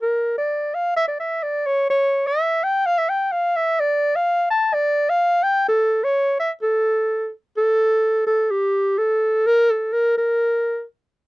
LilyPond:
\new Staff \with { instrumentName = "Clarinet" } { \time 2/4 \tempo 4 = 128 bes'8. d''8. f''8 | e''16 d''16 e''8 d''8 cis''8 | cis''8. e''8. g''8 | f''16 e''16 g''8 f''8 e''8 |
d''8. f''8. a''8 | d''8. f''8. g''8 | a'8. cis''8. e''16 r16 | a'4. r8 |
a'4. a'8 | g'4 a'4 | bes'8 a'8 bes'8 bes'8~ | bes'4 r4 | }